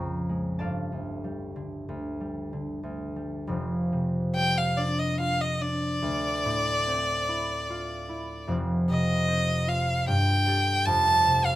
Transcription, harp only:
Already playing: A#1 C#3 F3 G#3 C#5 D#5 F5 G5 G#5 A#5 C6 C#6 F6
0.00 F2
0.29 G#3
0.59 G1 A4 D5 F5 A5
0.92 D2
1.24 G3
1.56 D3
1.89 D2
2.21 G3
2.53 D3
2.83 D2
3.16 G3
3.47 F1 F2
3.92 C3
4.36 G3
4.78 D4
5.20 F4
5.61 D4
6.02 D2
6.45 A2
6.87 C4
7.29 E4
7.70 F4
8.09 E4
8.47 F1 F2
8.89 C3
9.28 C4
9.67 F4
10.07 G2
10.47 G4 A4
10.86 F1 F2
11.27 C3

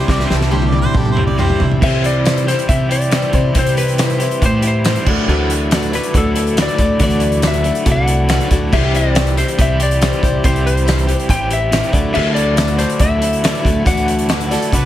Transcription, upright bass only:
0.08 C2
0.31 C2
0.94 C2
1.61 C3
1.82 C3
2.69 C3
3.34 C3
3.55 C3
4.42 A2
5.07 D2
5.28 D2
6.14 D2
6.79 D2
7.00 D2
7.86 C2
8.51 D2
8.73 C2
9.58 C2
10.23 C2
10.45 C2
11.29 A1
11.93 D2
12.15 D2
13.00 D2
13.65 D2
13.86 D2
14.73 C2

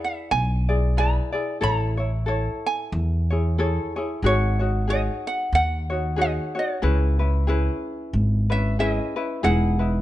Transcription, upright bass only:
0.31 B1
1.62 A1
2.92 E2
4.22 G#1
5.52 D#2
6.83 C#2
8.13 G#1
9.44 E1

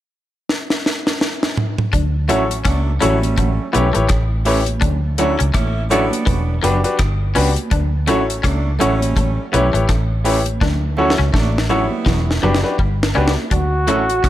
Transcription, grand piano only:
2.29 E4 F#4 A4 C#5
3.01 E4 F#4 A4 C#5
3.73 E4 G4 B4 C#5
3.94 E4 G4 B4 C#5
4.46 E4 G4 B4 C#5
5.19 E4 F#4 A4 C#5
5.91 E4 F#4 A4 C#5
6.63 D4 F#4 G4 B4
6.84 D4 F#4 G4 B4
7.35 D4 F#4 G4 B4
8.08 E4 F#4 A4 C#5
8.80 E4 F#4 A4 C#5
9.53 E4 G4 B4 C#5
9.74 E4 G4 B4 C#5
10.25 E4 G4 B4 C#5
10.98 E4 F#4 A4 C#5
11.69 E4 F#4 A4 C#5
12.43 D4 F#4 G4 B4
12.63 D4 F#4 G4 B4
13.15 D4 F#4 G4 B4
13.88 C#4 E4 F#4 A4

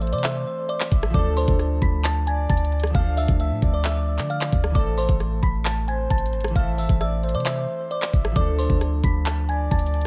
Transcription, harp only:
Already playing: E3 A3 C4 A4
1.10 F3 A3
1.16 D4 A4
2.90 F3 A3
2.96 D4 A4
4.70 E3 A3
4.76 C4 A4
6.50 E3 A3
6.56 C4 A4
8.32 F3 A3
8.38 D4 A4

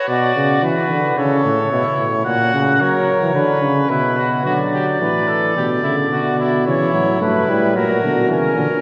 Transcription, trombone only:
0.09 B2
0.36 C#3
0.63 E3
0.91 D3
1.17 C#3
1.45 A2
1.72 B2
1.98 A2
2.26 A#2
2.54 C#3
2.81 F#3
3.21 E3
3.34 D3
3.62 C#3
3.90 B2
4.45 F#3
5.01 E3
5.57 D3
6.67 E3
6.94 F#3
7.21 A3
7.49 G3
7.75 F#3
8.03 D3
8.28 E3
8.57 D3

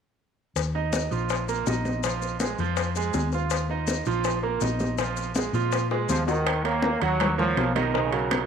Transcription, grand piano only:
0.75 D#4 D#5
1.11 F3 F4
1.49 A#3 A#4
1.68 D#4 D#5
2.05 F3 F4
2.42 G#3 G#4
2.60 F3 F4
2.97 G#3 G#4
3.34 F4 F5
3.70 D#4 D#5
4.07 F3 F4
4.43 A#3 A#4
4.62 D#4 D#5
4.99 F3 F4
5.36 G#3 G#4
5.54 F3 F4
5.92 G#3 G#4
6.28 F#4 F#5
6.65 A#3 A#4 C#5
7.02 F#3 F#4 F#5
7.21 A#3 A#4 C#5
7.38 A#3 A#4 C#5
7.75 D#3 D#4 D#5
7.94 D#3 D#4 D#5
8.13 F#3 F#4 A#4

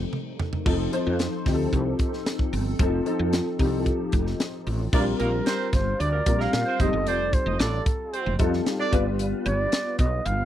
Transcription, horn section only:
4.93 D4 D5
5.20 A#3 A#4
5.45 C4 C5
5.99 D4 D5
6.12 A#3 A#4
6.39 A#3 A#4
6.66 C4 C5
7.07 C4 C5
7.47 D#4 D#5
7.59 D4 D5
8.12 C4 C5
8.80 D4 D5

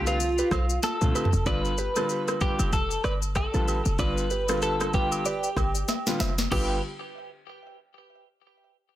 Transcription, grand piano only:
Already playing: D3 A3 C4 F4
1.01 D3 A3 C4 F4
1.46 D3 G3 B3 F4
1.96 D3 G3 B3 F4
2.41 D3 G3 B3 F4
3.54 D3 G3 B3 F4
3.99 D3 G3 B3 F4
4.49 D3 G3 B3 F4
4.93 D3 G3 B3 F4
6.06 D3 G3 B3 F4
6.51 D3 G3 B3 F4

